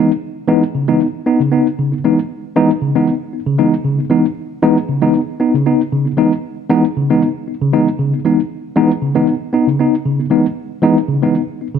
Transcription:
Already playing: E3 G#3 B3 D#4
0.48 E3 G#3 B3 D#4
0.75 C#3
0.88 E3 G#3 B3 D#4
1.01 B3 D#4
1.26 B3 D#4
1.40 C#3
1.52 B3 D#4
1.79 C#3
1.92 B3 D#4
2.04 E3 G#3 B3 D#4
2.56 E3 G#3 B3 D#4
2.82 C#3
2.95 E3 G#3 B3 D#4
3.07 B3 D#4
3.33 B3 D#4
3.47 C#3
3.58 E3 G#3 B3 D#4
3.85 C#3
3.98 B3 D#4
4.10 E3 G#3 B3 D#4
4.62 E3 G#3 B3 D#4
4.89 C#3
5.02 E3 G#3 B3 D#4
5.14 B3 D#4
5.40 B3 D#4
5.54 C#3
5.66 B3 D#4
5.92 C#3
6.05 B3 D#4
6.17 E3 G#3 B3 D#4
6.69 E3 G#3 B3 D#4
6.97 C#3
7.10 E3 G#3 B3 D#4
7.23 B3 D#4
7.48 B3 D#4
7.61 C#3
7.73 E3 G#3 B3 D#4
7.99 C#3
8.14 B3 D#4
8.25 E3 G#3 B3 D#4
8.76 E3 G#3 B3 D#4
9.02 C#3
9.15 E3 G#3 B3 D#4
9.28 B3 D#4
9.53 B3 D#4
9.68 C#3
9.79 B3 D#4
10.06 C#3
10.19 B3 D#4
10.30 E3 G#3 B3 D#4
10.82 E3 G#3 B3 D#4
11.08 C#3
11.22 E3 G#3 B3 D#4
11.35 B3 D#4
11.61 B3 D#4
11.75 C#3

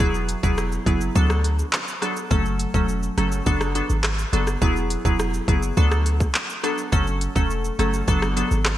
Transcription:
0.00 E1 F#3 B3 E4 G#4, kick, shaker
0.14 shaker
0.29 closed hi-hat, shaker
0.43 E1 F#3 B3 E4 G#4, kick, shaker
0.58 cross-stick, shaker
0.72 shaker
0.86 F#1 F#3 B3 E4 G#4, kick, closed hi-hat, shaker
1.01 shaker
1.15 D2 F#3 B3 D4 A4, kick, shaker
1.30 cross-stick, shaker
1.44 closed hi-hat, shaker
1.59 shaker
1.73 clap, shaker
1.88 shaker
2.02 F#3 B3 D4 A4, cross-stick, closed hi-hat, shaker
2.16 shaker
2.31 F#1 F#3 A3 C#4 A4, kick, shaker
2.45 shaker
2.60 closed hi-hat, shaker
2.74 E1 F#3 A3 C#4 A4, kick, shaker
2.89 shaker
3.03 shaker
3.18 F#1 F#3 A3 C#4 A4, cross-stick, closed hi-hat, shaker
3.32 shaker
3.46 F#1 F#3 B3 D4 A4, kick, shaker
3.61 cross-stick, shaker
3.75 F#3 B3 D4 A4, closed hi-hat, shaker
3.90 G#1, shaker
4.04 cross-stick, clap, shaker
4.19 shaker
4.33 F#1 F#3 B3 D4 A4, closed hi-hat, shaker
4.47 cross-stick, shaker
4.62 E1 F#3 B3 E4 G#4, kick, shaker
4.76 shaker
4.90 closed hi-hat, shaker
5.05 E1 F#3 B3 E4 G#4, kick, shaker
5.19 cross-stick, shaker
5.34 shaker
5.48 F#1 F#3 B3 E4 G#4, kick, closed hi-hat, shaker
5.63 shaker
5.77 D2 F#3 B3 D4 A4, kick, shaker
5.92 cross-stick, shaker
6.06 closed hi-hat, shaker
6.20 kick, shaker
6.35 clap, shaker
6.50 shaker
6.63 F#3 B3 D4 A4, cross-stick, closed hi-hat, shaker
6.78 shaker
6.92 F#1 F#3 A3 C#4 A4, kick, shaker
7.07 shaker
7.21 closed hi-hat, shaker
7.35 E1 F#3 A3 C#4 A4, kick, shaker
7.50 shaker
7.65 shaker
7.79 F#1 F#3 A3 C#4 A4, cross-stick, closed hi-hat, shaker
7.93 shaker
8.08 F#1 F#3 B3 D4 A4, kick, shaker
8.22 cross-stick, shaker
8.37 F#3 B3 D4 A4, closed hi-hat, shaker
8.51 G#1, shaker
8.65 cross-stick, clap, shaker

